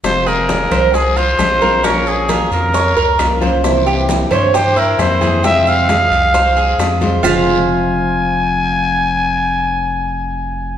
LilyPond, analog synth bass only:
\new Staff \with { instrumentName = "Analog synth bass" } { \clef bass \time 4/4 \key f \minor \tempo 4 = 134 f,,4. c,4. bes,,4~ | bes,,4. f,4 des,8 c,4~ | c,4. g,4. f,4~ | f,4. c,4. f,4 |
f,,1~ | f,,1 | }